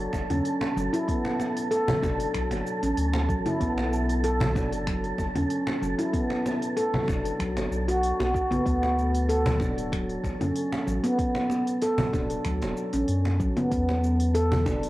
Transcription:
Already playing: A4
0.13 F#1, kick, cajon slap, cabasa
0.30 E2 C#4, open hi-hat, low conga, cabasa
0.45 open hi-hat, cabasa
0.61 cajon slap
0.76 F#1 F#3, cabasa
0.93 E4, open hi-hat, cabasa
1.08 B3, kick, open hi-hat, cabasa
1.25 cajon slap
1.40 cajon slap, cabasa
1.57 open hi-hat, cabasa
1.71 A4, open hi-hat, cabasa
1.88 F#3, cajon bass, low conga
2.02 F#1 D4, kick, cajon slap, cabasa
2.20 open hi-hat, cabasa
2.34 B1 F#3, finger snap, kick, open hi-hat, cabasa
2.51 F#1, cajon slap, open hi-hat
2.67 cabasa
2.83 A1 C#4, open hi-hat, cabasa
2.97 D2, open hi-hat, cabasa
3.14 cajon slap
3.29 A1 F#3, kick, cabasa
3.46 E4, open hi-hat, low conga, cabasa
3.60 B1 B3, kick, open hi-hat, cabasa
3.78 cajon slap
3.93 cabasa
4.09 open hi-hat, cabasa
4.24 A4, open hi-hat, cabasa
4.40 F#3, cajon bass, low conga
4.55 F#1 D4, kick, cajon slap, cabasa
4.72 open hi-hat, cabasa
4.87 F#3, finger snap, kick, open hi-hat, cabasa
5.04 open hi-hat
5.18 F#1, kick, cajon slap, cabasa
5.35 E2 C#4, open hi-hat, low conga, cabasa
5.50 open hi-hat, cabasa
5.67 cajon slap
5.82 F#1 F#3, cabasa
5.98 E4, open hi-hat, cabasa
6.13 B3, kick, open hi-hat, cabasa
6.30 cajon slap
6.46 cajon slap, cabasa
6.62 open hi-hat, cabasa
6.77 A4, open hi-hat, cabasa
6.94 F#3, cajon bass, low conga
7.08 F#1 D4, kick, cajon slap, cabasa
7.25 open hi-hat, cabasa
7.40 B1 F#3, finger snap, kick, open hi-hat, cabasa
7.57 F#1, cajon slap, open hi-hat
7.71 B1, cabasa
7.88 F#4, open hi-hat, cabasa
8.03 open hi-hat, cabasa
8.20 B1 F#4, cajon slap
8.34 F#4, kick, cabasa
8.51 B3, open hi-hat, low conga, cabasa
8.66 D2 B3, kick, open hi-hat, cabasa
8.83 cajon slap
8.99 cabasa
9.15 open hi-hat, cabasa
9.29 A4, open hi-hat, cabasa
9.46 F#3, cajon bass, low conga
9.60 D1 D4, kick, cajon slap, cabasa
9.78 open hi-hat, cabasa
9.92 F#3, finger snap, kick, open hi-hat, cabasa
10.10 open hi-hat
10.24 A1, kick, cajon slap, cabasa
10.41 F#2 C#4, open hi-hat, low conga, cabasa
10.56 open hi-hat, cabasa
10.73 cajon slap
10.87 A1 F#3, cabasa
11.04 B3, open hi-hat, cabasa
11.19 B3, kick, open hi-hat, cabasa
11.35 cajon slap
11.50 cajon slap, cabasa
11.67 open hi-hat, cabasa
11.82 A4, open hi-hat, cabasa
11.98 F#3, cajon bass, low conga
12.13 D1 D4, kick, cajon slap, cabasa
12.30 open hi-hat, cabasa
12.45 D2 F#3, finger snap, kick, open hi-hat, cabasa
12.62 D1, cajon slap, open hi-hat
12.77 cabasa
12.93 A1 C#4, open hi-hat, cabasa
13.08 F#2, open hi-hat, cabasa
13.25 cajon slap
13.40 A1 F#3, kick, cabasa
13.56 B3, open hi-hat, low conga, cabasa
13.71 E2 B3, kick, open hi-hat, cabasa
13.89 cajon slap
14.04 cabasa
14.20 open hi-hat, cabasa
14.34 A4, open hi-hat, cabasa
14.51 F#3, cajon bass, low conga
14.66 E1 D4, kick, cajon slap, cabasa
14.83 open hi-hat, cabasa

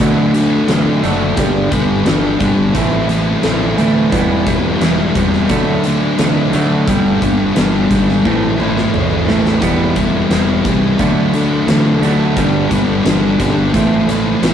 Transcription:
0.00 D2 D3 F#3 A3 D4, kick, closed hi-hat
0.34 D3 F#3 A3 D4, closed hi-hat
0.68 D2 D3 F#3 A3 D4, snare, closed hi-hat
1.02 F#1 D3 F#3 A3 D4, closed hi-hat
1.36 G1 G2 D3 G3 B3 D4, kick, closed hi-hat
1.70 G1 G2 D3 G3 B3 D4, kick, closed hi-hat
2.05 G1 G2 D3 G3 B3 D4, snare, closed hi-hat
2.40 G1 G2 D3 G3 B3 D4, kick, closed hi-hat
2.74 A1 A2 E3 A3 C4 E4, kick, closed hi-hat
3.08 A2 E3 A3 C4 E4, closed hi-hat
3.43 A1 A2 E3 A3 C4 E4, snare, closed hi-hat
3.77 D2 A2 E3 A3 C4 E4, closed hi-hat
4.11 E1 E3 G3 B3 E4, kick, closed hi-hat
4.46 E3 G3 B3 E4, kick, closed hi-hat
4.81 E1 E3 G3 B3 E4, snare, closed hi-hat
5.15 E1 E3 G3 B3 E4, kick, closed hi-hat
5.33 snare
5.49 D2 D3 F#3 A3 D4, kick, closed hi-hat
5.84 D3 F#3 A3 D4, closed hi-hat
6.18 D2 D3 F#3 A3 D4, snare, closed hi-hat
6.53 D2 D3 F#3 A3 D4, closed hi-hat
6.87 G1 G2 D3 G3 B3 D4, kick, closed hi-hat
7.22 G1 G2 D3 G3 B3 D4, kick, closed hi-hat
7.56 G1 G2 D3 G3 B3 D4, snare, closed hi-hat
7.90 G#1 G2 D3 G3 B3 D4, kick, closed hi-hat
8.09 snare
8.25 A1 A2 E3 A3 C4 E4, kick
8.59 A2 E3 A3 C4 E4, mid tom
8.77 snare
8.94 A1 A2 E3 A3 C4 E4, mid tom
9.28 A1 A2 E3 A3 C4 E4, snare
9.45 snare
9.62 E1 E3 G3 B3 E4, kick, closed hi-hat
9.96 E3 G3 B3 E4, kick, closed hi-hat
10.30 E1 E3 G3 B3 E4, snare, closed hi-hat
10.65 C2 E3 G3 B3 E4, kick, closed hi-hat
10.99 D2 D3 F#3 A3 D4, kick, closed hi-hat
11.33 D3 F#3 A3 D4, closed hi-hat
11.67 D2 D3 F#3 A3 D4, snare, closed hi-hat
12.01 D2 D3 F#3 A3 D4, closed hi-hat
12.36 G1 G2 D3 G3 B3 D4, kick, closed hi-hat
12.70 G1 G2 D3 G3 B3 D4, kick, closed hi-hat
13.05 G1 G2 D3 G3 B3 D4, snare, closed hi-hat
13.39 G1 G2 D3 G3 B3 D4, kick, snare, closed hi-hat
13.73 A1 A2 E3 A3 C4 E4, kick, closed hi-hat
14.09 A2 E3 A3 C4 E4, closed hi-hat
14.42 A1 A2 E3 A3 C4 E4, snare, closed hi-hat

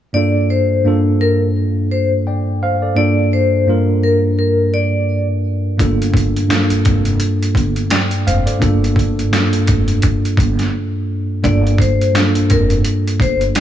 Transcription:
0.13 G2 A#3 D4 F4 A4 D5
0.50 C5
0.84 G2 A#3 D4 F4 A4
1.21 A#4
1.91 C5
2.27 D5 G5
2.63 C5 F5
2.82 A4 D5
2.95 G2 A#3 D4 F4 A4 D5
3.33 C5
3.67 G2 A#3 D4 F4 A#4
4.03 A#4
4.39 A#4
4.74 D5
5.78 G1 G2 A#3 D4 F4 A4, kick, closed hi-hat
6.02 closed hi-hat
6.14 kick, closed hi-hat
6.36 closed hi-hat
6.48 G2 A#3 D4 F4 A4, snare, closed hi-hat
6.70 muted upright bass stroke, closed hi-hat
6.85 F1, kick, closed hi-hat
7.05 closed hi-hat
7.20 closed hi-hat
7.43 closed hi-hat
7.55 G1, kick, closed hi-hat
7.76 closed hi-hat
7.90 D5 G5, snare, closed hi-hat
8.11 closed hi-hat
8.27 F1 C5 F5, closed hi-hat
8.46 A4 D5, closed hi-hat
8.59 G1 G2 A#3 D4 F4 A4, kick, closed hi-hat
8.84 closed hi-hat
8.96 kick, closed hi-hat
9.19 closed hi-hat
9.31 G2 A#3 D4 F4 A4, snare, closed hi-hat
9.53 muted upright bass stroke, closed hi-hat
9.67 F1, kick, closed hi-hat
9.88 closed hi-hat
10.02 kick, closed hi-hat
10.25 closed hi-hat
10.37 G1, kick, closed hi-hat
10.59 snare, closed hi-hat
11.42 G1 G2 A#3 D4 F4 A4 D5, kick, closed hi-hat
11.67 closed hi-hat
11.78 C5, kick, closed hi-hat
12.01 closed hi-hat
12.13 G2 A#3 D4 F4 A4, snare, closed hi-hat
12.35 muted upright bass stroke, closed hi-hat
12.50 F1 A#4, kick, closed hi-hat
12.70 closed hi-hat
12.85 closed hi-hat
13.07 closed hi-hat
13.20 G1 C5, kick, closed hi-hat
13.41 closed hi-hat
13.55 D5 G5, snare, closed hi-hat

